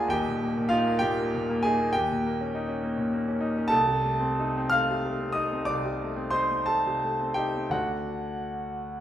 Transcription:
Already playing: D2 D3 A#3 D4 F4 G#4 A#4 C5 G#5 A#5 C6
0.08 D#1 D#2 G4 G5
0.28 A#2
0.42 A#3
0.57 A#2
0.69 D#4 F4 F5
0.86 A#3
0.99 A#2 G4 G5
1.19 A#3
1.34 A#2
1.49 A#3
1.63 D#4 G#4 G#5
1.81 A#3
1.93 D#2 G4 G5
2.12 A#2
2.26 A#3
2.41 C#4
2.55 D#4
2.68 C#4
2.83 A#3
2.98 A#2
3.13 A#3
3.28 C#4
3.41 D#4
3.58 C#4
3.68 C2 A4 A5
3.87 C3
4.04 A3
4.20 C4
4.39 D#4
4.57 C4
4.70 A3 F5 F6
4.90 C3
5.06 A3
5.20 C4
5.32 D#4 D#5 D#6
5.53 C4
5.65 C2 D5 D6
5.85 C3
6.02 A3
6.16 C4
6.30 D#4 C5 C6
6.52 C4
6.66 A3 A4 A5
6.87 C3
7.03 A3
7.21 C4
7.34 D#4 G4 G5
7.56 C4
7.70 D2 A3 D4 F#4 F#5

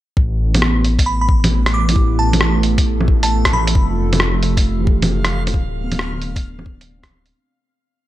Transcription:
0.17 A1 E3, kick
0.45 B3
0.55 A3 B3, closed hi-hat, low bongo
0.62 cross-stick
0.82 A4, closed hi-hat
0.91 B4
0.99 kick, closed hi-hat
1.06 B5
1.21 B5
1.29 kick
1.44 closed hi-hat, low bongo
1.66 cross-stick, closed hi-hat
1.74 D6
1.89 E4, closed hi-hat, low bongo
1.96 G4, kick
2.19 A5
2.33 closed hi-hat, low bongo
2.41 cross-stick
2.63 closed hi-hat
2.78 kick, closed hi-hat
3.01 low bongo
3.08 kick
3.23 A5, closed hi-hat
3.45 kick, cross-stick, closed hi-hat
3.53 B5, low bongo
3.67 closed hi-hat
3.75 F1 C3 F5, kick
3.90 F4
4.13 closed hi-hat, low bongo
4.20 cross-stick
4.43 closed hi-hat
4.57 kick, closed hi-hat
4.80 E3
4.85 G4, kick
4.90 A4
5.02 closed hi-hat, low bongo
5.25 cross-stick, closed hi-hat
5.47 closed hi-hat, low bongo
5.54 D1, kick
5.84 B3
5.92 D4 D5, closed hi-hat, low bongo
5.99 cross-stick
6.22 closed hi-hat
6.36 kick, closed hi-hat
6.59 low bongo
6.66 B3, kick
6.81 closed hi-hat
6.99 C4
7.03 kick, cross-stick, closed hi-hat
7.11 low bongo
7.26 closed hi-hat

